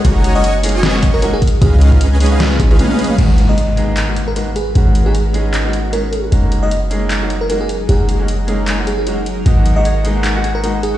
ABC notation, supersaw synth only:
X:1
M:4/4
L:1/16
Q:"Swing 16ths" 1/4=153
K:F#
V:1 name="Supersaw synth"
[Fcdga]3 [Fcdgc']2 z2 [Fcdgc']4 [Fcdgc'] z4 | [CGBde]3 [GB]4 [CGBde] z3 [CGBde]2 [CGBde]3 | z16 | z16 |
z16 | z16 | z16 |]